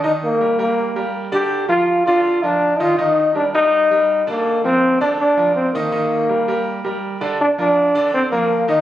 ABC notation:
X:1
M:4/4
L:1/8
Q:1/4=163
K:Bb
V:1 name="Grand piano"
[E,Ee]2 [G,GB] [G,GB]2 [G,GB]2 [D,Dd]- | [D,Dd] [F,FB]2 [D,Dd]2 [F,FB]2 [E,Ee] | [E,Ee]2 [G,GB] [G,GB]2 [G,GB]2 [D,Dd]- | [D,Dd] [F,FB]2 [D,Dd]2 [F,FB]2 [E,Ee] |
[E,Ee]2 [G,GB] [G,GB]2 [G,GB]2 [D,Dd] | z [F,FB]2 [D,Dd]2 [F,FB]2 [E,Ee] |]
V:2 name="Trombone"
E B,2 B,3 z G- | G F2 F2 D2 F | E2 D E4 B,- | B, C2 D D2 C B,- |
B,6 z2 | D D3 C B,2 E |]